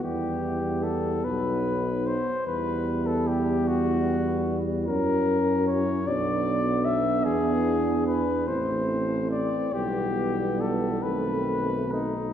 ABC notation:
X:1
M:6/8
L:1/16
Q:3/8=49
K:Em
V:1 name="Cornet"
G4 A2 B4 c2 | B3 A G2 F4- F z | ^A4 ^c2 d4 e2 | ^G4 B2 c4 d2 |
G4 A2 B4 ^D2 |]
V:2 name="French horn section"
E6 ^D6 | E12- | E6 D6- | D6 C6 |
B,6 C6 |]
V:3 name="Trombone section"
B,12 | B,12 | ^C6 B,6- | B,6 A,6 |
G,6 A,6 |]
V:4 name="Trombone" clef=bass
G,6 F,4 z2 | G,12 | F,12 | E,12 |
E,6 ^D,6 |]
V:5 name="Tuba" clef=bass
E,,6 B,,,4 z2 | E,,12 | F,,6 B,,,6 | E,,6 A,,,6 |
B,,,6 B,,,6 |]